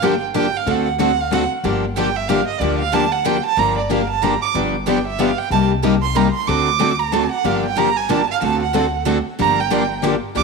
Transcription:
Already playing: G1
0.02 D3 F3 A#3 D4 G4 G5
0.34 D3 F3 A#3 D4 G4 G5
0.57 F5
0.66 D2 D3 A3 C4 F#4 A4
0.71 F#5
0.98 D3 A3 C4 F#4 A4 F#5
1.20 F5
1.31 D3 A3 C4 F#4 A4 F#5
1.64 G1 D3 F3 A#3 D4 G4
1.97 D3 F3 A#3 D4 G4 G5
2.16 E5
2.28 D3 F3 A#3 D4 G4 F5
2.47 D#5
2.60 D2 D3 F3 A#3 D4 G4 D5
2.79 F5
2.93 D3 F3 A#3 D4 G4 A5
3.12 F#5
3.25 D3 F3 A#3 D4 G4 G5
3.46 A5
3.57 G1 D3 F3 A#3 D4 G4 A#5
3.78 D5
3.89 D3 F3 A#3 D4 G4 F5
4.10 A5
4.23 D3 F3 A#3 D4 G4 A#5
4.42 D6
4.55 G1 D3 F3 B3 D4 G4
4.87 D3 F3 B3 D4 G4 G5
5.07 E5
5.19 D3 F3 B3 D4 G4 F5
5.38 G5
5.50 C2 C3 G3 A#3 D#4 G4 A5
5.83 C3 G3 A#3 D#4 G4
6.02 C6
6.15 C3 G3 A#3 D#4 G4 A#5
6.34 C6
6.47 D2 D3 A3 C4 F#4 A4 D6
6.80 D3 A3 C4 F#4 A4
6.99 A#5
7.12 D3 A3 C4 F#4 A4 A5
7.31 F#5
7.44 G1 D3 F3 A#3 D4 G4 F5
7.66 G5
7.77 D3 F3 A#3 D4 G4 A#5
7.97 G#5
8.09 D3 F3 A#3 D4 G4 A5
8.31 F5
8.42 D2 D3 A3 C4 F#4 A4 A5
8.63 F#5
8.74 D3 A3 C4 F#4 A4
9.06 D3 A3 C4 F#4 A4
9.39 G1 D3 F3 A#3 D4 G4 A#5
9.60 G5
9.70 D3 F3 A#3 D4 G4
10.02 D3 F3 A#3 D4 G4
10.35 D2 D3 F3 A#3 D4 G4 D6

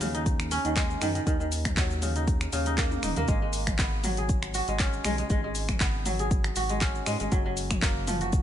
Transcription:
Already playing: D#2 B3
0.01 C#3, open hi-hat, mid tom, shaker
0.14 D#4, closed hi-hat, shaker
0.26 kick, closed hi-hat, shaker
0.40 finger snap, shaker
0.51 C#4, open hi-hat, shaker
0.65 D#2 D#3, closed hi-hat, shaker
0.76 G#3, kick, clap, closed hi-hat, shaker
0.90 shaker
1.01 F#2 D#3, finger snap, open hi-hat, mid tom, shaker
1.15 D#3, closed hi-hat, shaker
1.27 D#2 D#3, kick, closed hi-hat, shaker
1.40 D#3, shaker
1.52 open hi-hat, shaker
1.65 finger snap, kick, closed hi-hat, mid tom, shaker
1.77 F#3, kick, clap, closed hi-hat, shaker
1.91 shaker
2.02 C#3, open hi-hat, mid tom, shaker
2.16 D#4, closed hi-hat, shaker
2.28 kick, closed hi-hat, shaker
2.41 finger snap, shaker
2.53 D#2 C#3, open hi-hat, shaker
2.66 D#4, closed hi-hat, shaker
2.78 A#3, kick, clap, closed hi-hat, shaker
2.91 high tom, shaker
3.03 D#1 D#4, finger snap, open hi-hat, mid tom, shaker
3.16 D#2 A#3, closed hi-hat, mid tom, shaker
3.28 G#1 G#3, kick, closed hi-hat, shaker
3.42 G#3
3.53 open hi-hat, shaker
3.67 finger snap, kick, closed hi-hat, mid tom, shaker
3.79 B3, kick, clap, closed hi-hat, shaker
4.04 F#3, open hi-hat, mid tom, shaker
4.17 G#4, closed hi-hat, shaker
4.29 kick, closed hi-hat, shaker
4.43 finger snap, shaker
4.54 F#4, open hi-hat, shaker
4.68 G#1 G#3, closed hi-hat, shaker
4.79 C#4, kick, clap, closed hi-hat, shaker
4.93 shaker
5.04 B1 G#3, finger snap, open hi-hat, mid tom, shaker
5.18 G#3, closed hi-hat, shaker
5.30 G#1 G#3, kick, closed hi-hat, shaker
5.44 G#3
5.55 open hi-hat, shaker
5.69 finger snap, kick, closed hi-hat, mid tom, shaker
5.80 B3, kick, clap, closed hi-hat, shaker
6.06 F#3, open hi-hat, mid tom, shaker
6.19 G#4, closed hi-hat, shaker
6.31 kick, closed hi-hat, shaker
6.44 finger snap, shaker
6.56 G#1 F#4, open hi-hat, shaker
6.69 G#3, closed hi-hat, shaker
6.81 C#4, kick, clap, closed hi-hat, shaker
6.95 shaker
7.06 G#2 G#3, finger snap, open hi-hat, shaker
7.20 G#1 G#3, closed hi-hat, shaker
7.32 F#1 F#3, kick, closed hi-hat, shaker
7.46 F#3
7.57 open hi-hat, shaker
7.71 finger snap, kick, closed hi-hat, mid tom, shaker
7.82 A#3, kick, clap, closed hi-hat, shaker
8.07 F3, open hi-hat, mid tom, shaker
8.21 F#4, closed hi-hat, shaker
8.32 kick, closed hi-hat, shaker

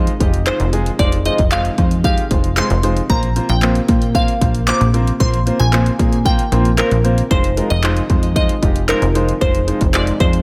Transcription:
Already playing: C3 D#3 F3 G#3 D#4 C5 D#5
0.07 closed hi-hat
0.20 F1 G#3 D#4 F4 G4, kick, closed hi-hat
0.34 closed hi-hat
0.46 G#3 D#4 F4 C5, clap, closed hi-hat
0.60 F1, closed hi-hat
0.73 G#3 D#4 F4 G#4, closed hi-hat
0.86 closed hi-hat
0.99 F1 G#3 D#4 F4 C5 D5, kick, closed hi-hat
1.12 closed hi-hat
1.25 G#3 D#4 F4 C5 D#5, closed hi-hat
1.38 F1, kick, closed hi-hat
1.51 G#3 D#4 F4 C5 F5, clap, closed hi-hat
1.65 closed hi-hat
1.78 F2 G#3 D#4 F4 C5, kick, closed hi-hat
1.91 closed hi-hat
2.04 G#3 D#4 F4 G4 F5, kick, closed hi-hat
2.18 closed hi-hat
2.31 F1 G#3 D#4 F4 C5, kick, closed hi-hat
2.44 closed hi-hat
2.57 G#3 D#4 F4 C5 C6, clap, closed hi-hat
2.70 F1, closed hi-hat
2.83 G#3 D#4 F4 C5, closed hi-hat
2.97 closed hi-hat
3.10 A#1 A#3 C4 F4 C5 A#5, kick, closed hi-hat
3.23 closed hi-hat
3.36 A#3 C4 F4 C5, closed hi-hat
3.49 A#1 G5, closed hi-hat
3.62 A#3 C4 F4 C5, clap, closed hi-hat
3.75 closed hi-hat
3.88 A#2 A#3 C4 F4 C5, kick, closed hi-hat
4.02 closed hi-hat
4.15 A#3 C4 F4 C5 F5, kick, closed hi-hat
4.28 closed hi-hat
4.41 A#1 A#3 C4 F4 C5, kick, closed hi-hat
4.55 closed hi-hat
4.67 A#3 C4 F4 C5 D6, clap, closed hi-hat
4.81 A#1, closed hi-hat
4.94 A#3 C4 F4 C5, closed hi-hat
5.07 closed hi-hat
5.20 A#1 D#3 A#3 C4 F4 C5 C6, kick, closed hi-hat
5.34 closed hi-hat
5.46 A#3 C4 F4 C5, closed hi-hat
5.60 A#1 G#5, closed hi-hat
5.73 A#3 C4 F4 C5, clap, closed hi-hat
5.86 closed hi-hat
5.99 A#2 A#3 C4 F4 G#4, kick, closed hi-hat
6.13 closed hi-hat
6.25 A#3 C4 F4 C5 G5, kick, closed hi-hat
6.39 closed hi-hat
6.52 A#1 A#3 C4 F4 C5, closed hi-hat
6.65 closed hi-hat
6.78 A#3 C4 F4 A#4 C5, clap, closed hi-hat
6.91 A#1, closed hi-hat
7.04 A#3 C4 F4 C5, closed hi-hat
7.18 closed hi-hat
7.31 F1 C3 F3 G#3 D#4 F4 C5, kick, closed hi-hat
7.44 closed hi-hat
7.57 G#3 D#4 F4 A#4, closed hi-hat
7.70 F1 D#5, closed hi-hat
7.83 G#3 D#4 F4 C5, clap, closed hi-hat
7.97 closed hi-hat
8.09 F2 G#3 D#4 F4 C5, kick, closed hi-hat
8.23 closed hi-hat
8.36 G#3 D#4 F4 C5 D#5, kick, closed hi-hat
8.49 closed hi-hat
8.62 F1 G#3 D#4 F4 G4, kick, closed hi-hat
8.76 closed hi-hat
8.88 G#3 D#4 F4 A#4 C5, clap, closed hi-hat
9.02 F1, closed hi-hat
9.15 G#3 D#4 F4 C5, closed hi-hat
9.29 closed hi-hat
9.41 F1 G#3 D#4 F4 C5, kick, closed hi-hat
9.55 closed hi-hat
9.67 G#3 D#4 F4 C5, closed hi-hat
9.81 F1, kick, closed hi-hat
9.94 G#3 D#4 F4 C5 D5, clap, closed hi-hat
10.07 closed hi-hat
10.20 F2 G#3 D#4 F4 C5, kick, closed hi-hat
10.33 closed hi-hat

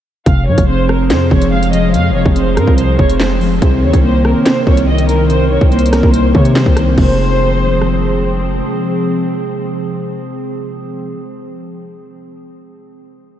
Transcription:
0.26 F1 C3 F3 C4 G#4 F5, kick, closed hi-hat
0.47 G#2 F3 C#5
0.58 F1, kick, closed hi-hat
0.68 C4 C5
0.89 A#4 C5, cross-stick
1.10 F2 C3 C5, snare, clap, closed hi-hat
1.31 F1 F3 C#5, kick
1.42 closed hi-hat
1.52 G#3 F5
1.63 closed hi-hat
1.73 F3 D#5, closed hi-hat
1.94 F2 C3 F5, closed hi-hat
2.10 F1
2.15 F3 C#5
2.26 F1, kick
2.36 C4 C5, closed hi-hat
2.57 G#2 A#4 C5, cross-stick, closed hi-hat
2.67 C2, kick
2.78 C3 C5, closed hi-hat
2.99 F1 F3 C#5, kick
3.09 closed hi-hat
3.20 G#3 C5, snare, clap
3.41 F3, open hi-hat
3.62 C2 C3 D#3 A#4 C5, kick, closed hi-hat
3.83 D#2 D#3 C#5
3.93 C2, kick, closed hi-hat
4.04 A#3 C5
4.25 C4 A#4, cross-stick
4.46 C3 C5, snare, clap, closed hi-hat
4.67 C2 D#3 C#5, kick
4.77 closed hi-hat
4.88 G3 D#5
4.98 closed hi-hat
5.09 D#3 A#4, closed hi-hat
5.30 C3 C5, closed hi-hat
5.51 D#3 C#5
5.61 C2, kick
5.72 A#3 C5, closed hi-hat
5.79 closed hi-hat
5.86 closed hi-hat
5.93 C4 A#4, cross-stick, snare, closed hi-hat
6.03 C2, kick
6.14 C3 C5, closed hi-hat
6.35 C3 D#3 C#5, kick
6.45 closed hi-hat
6.56 G3 C5, snare, clap
6.66 C2, kick
6.77 D#3, cross-stick, closed hi-hat
6.92 C3
6.96 F1 F3 G#3 C4 G#4 C5, kick, crash
7.04 C4
7.81 cross-stick

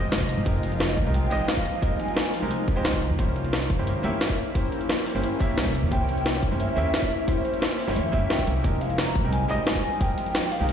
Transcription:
Already playing: F3 G#3 A#3 C4 D#4 F4 G4 A#4 C5 D#5
0.12 F1, snare, closed hi-hat
0.21 kick
0.29 closed hi-hat
0.38 G#1
0.45 F1 G#3 C4 D#4 G4 A#4 D#5, kick, closed hi-hat
0.63 closed hi-hat
0.72 closed hi-hat
0.80 snare, closed hi-hat
0.89 closed hi-hat
0.97 kick, closed hi-hat
1.05 C2 G#3 C4 D#4 G4 A#4
1.14 G5, closed hi-hat
1.30 G#1 G#3 C4 D#4 G4 D#5, closed hi-hat
1.48 F5, snare, closed hi-hat
1.57 kick
1.66 closed hi-hat
1.81 G3 G#3 C4 D#4 A#4 D#5, kick, closed hi-hat
2.00 G#5, closed hi-hat
2.08 closed hi-hat
2.16 snare, closed hi-hat
2.25 closed hi-hat
2.34 open hi-hat
2.42 C2 G#3 C4 D#4 G4 A#4
2.51 closed hi-hat
2.68 kick, closed hi-hat
2.76 G#3 C4 D#4 G4 C5
2.85 C2, snare, closed hi-hat
2.93 kick
3.02 C#4 E4, closed hi-hat
3.10 E2
3.18 C2 A#3 C#4 E4 G4 C5, kick, closed hi-hat
3.36 closed hi-hat
3.45 closed hi-hat
3.53 snare, closed hi-hat
3.62 closed hi-hat
3.70 kick, closed hi-hat
3.78 G1 A#3 C#4 E4 G4 C5
3.87 closed hi-hat
4.03 E2 A#3 C#4 E4 G4 E5, closed hi-hat
4.21 snare, closed hi-hat
4.30 kick
4.38 closed hi-hat
4.54 A#3 C#4 E4 G4 C5, kick, closed hi-hat
4.72 closed hi-hat
4.81 closed hi-hat
4.89 snare, closed hi-hat
4.98 closed hi-hat
5.06 open hi-hat
5.14 G1 A#3 C#4 E4 G4 C5
5.24 closed hi-hat
5.39 A#3 C#4 E4 G4 E5, kick, closed hi-hat
5.57 C2, snare, closed hi-hat
5.66 kick
5.75 closed hi-hat
5.83 E2
5.91 C2 A#3 C#4 E4 G4 C5 G5, kick, closed hi-hat
6.09 closed hi-hat
6.17 closed hi-hat
6.26 snare, closed hi-hat
6.34 closed hi-hat
6.43 kick, closed hi-hat
6.51 G1 A#3 C#4 E4 G4 C5
6.60 E5, closed hi-hat
6.76 E2 A#3 C#4 E4 G4 E5, closed hi-hat
6.94 snare, closed hi-hat
7.02 kick
7.11 closed hi-hat
7.27 A#3 C#4 E4 G4 C5, kick, closed hi-hat
7.45 closed hi-hat
7.54 closed hi-hat
7.62 snare, closed hi-hat
7.71 closed hi-hat
7.79 open hi-hat
7.87 G1 A#3 C#4 E4 G4 C5, snare
7.96 E2 E5, closed hi-hat
8.12 G1 A#3 C#4 E4 G4 E5, kick, closed hi-hat
8.30 G5, snare, closed hi-hat
8.39 kick
8.47 C2, closed hi-hat
8.63 F1 F3 G#3 A#3 C4 D#4 F4 G4 A#4 D#5, kick, closed hi-hat
8.81 F5, closed hi-hat
8.90 closed hi-hat
8.98 A#5, snare, closed hi-hat
9.07 closed hi-hat
9.15 kick, closed hi-hat
9.23 C2 G#3 C4 D#4 G4 A#4
9.32 G#5, closed hi-hat
9.48 G#1 G3 G#3 C4 D#4 D#5, closed hi-hat
9.66 G#5, snare, closed hi-hat
9.75 kick
9.84 closed hi-hat
9.99 G#3 C4 D#4 G4 A#4 G5, kick, closed hi-hat
10.18 closed hi-hat
10.26 closed hi-hat
10.35 snare, closed hi-hat
10.43 closed hi-hat
10.51 F5, open hi-hat
10.60 C2 G#3 C4 D#4 G4 A#4
10.69 closed hi-hat

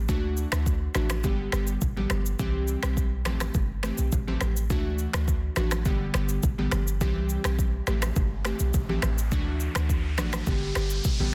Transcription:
Already playing: A1
0.08 D2 E3 A3 D4 F#4, kick, low conga, shaker
0.37 shaker
0.52 D2 E3 A3 D4 F#4, finger snap, cross-stick, shaker
0.66 kick, shaker
0.95 A1 E3 A3 D4 F#4, finger snap, cross-stick, high conga, shaker
1.10 finger snap, cross-stick, high conga, shaker
1.24 G1 D3 G3 B3 G4, kick, low conga, shaker
1.52 G1 D3 G3 B3 G4, finger snap, cross-stick, shaker
1.67 shaker
1.81 A1, kick, low conga, shaker
1.96 D3 G3 B3 G4, high conga
2.10 G1, finger snap, cross-stick, high conga, shaker
2.26 shaker
2.39 C2 E3 G3 C4 G4, kick, low conga, shaker
2.68 shaker
2.83 B1 E3 G3 C4 G4, finger snap, cross-stick, shaker
2.97 kick, shaker
3.25 A1 E3 A3 C4 G4, finger snap, cross-stick, high conga, shaker
3.40 finger snap, cross-stick, high conga, shaker
3.54 G1, kick, low conga, shaker
3.83 E3 A3 C4 G4, finger snap, cross-stick, shaker
3.98 B1, shaker
4.12 A1, kick, low conga, shaker
4.27 E3 A3 C4 G4, high conga
4.41 A1, finger snap, cross-stick, high conga, shaker
4.57 shaker
4.70 D2 E3 A3 D4 F#4, kick, low conga, shaker
4.99 shaker
5.13 D2 E3 A3 D4 F#4, finger snap, cross-stick, shaker
5.28 kick, shaker
5.56 A1 E3 A3 D4 F#4, finger snap, cross-stick, high conga, shaker
5.71 finger snap, cross-stick, high conga, shaker
5.85 G1 D3 G3 B3 G4, kick, low conga, shaker
6.14 G1 D3 G3 B3 G4, finger snap, cross-stick, shaker
6.29 shaker
6.43 A1, kick, low conga, shaker
6.58 D3 G3 B3 G4, high conga
6.71 G1, finger snap, cross-stick, high conga, shaker
6.88 shaker
7.01 C2 E3 G3 C4 G4, kick, riser, low conga, shaker
7.29 shaker
7.44 B1 E3 G3 C4 G4, finger snap, cross-stick, shaker
7.59 kick, shaker
7.87 A1 E3 A3 C4 G4, finger snap, cross-stick, high conga, shaker
8.02 finger snap, cross-stick, high conga, shaker
8.16 G1, kick, low conga, shaker
8.45 E3 A3 C4 G4, finger snap, cross-stick, shaker
8.59 B1, shaker
8.74 A1, kick, low conga, shaker
8.89 E3 A3 C4 G4, high conga
9.02 A1, finger snap, cross-stick, high conga, shaker
9.18 shaker
9.31 D2 E3 A3 D4 F#4, kick, low conga, shaker
9.60 shaker
9.75 D2 E3 A3 D4 F#4, finger snap, cross-stick, shaker
9.89 kick, shaker
10.18 A1 E3 A3 D4 F#4, finger snap, cross-stick, high conga, shaker
10.33 finger snap, cross-stick, high conga, shaker
10.47 G1 D3 G3 B3 G4, kick, low conga, shaker
10.75 G1 D3 G3 B3 G4, finger snap, cross-stick, shaker
10.90 shaker
11.04 kick, low conga, shaker
11.20 A1 D3 G3 B3 G4, high conga

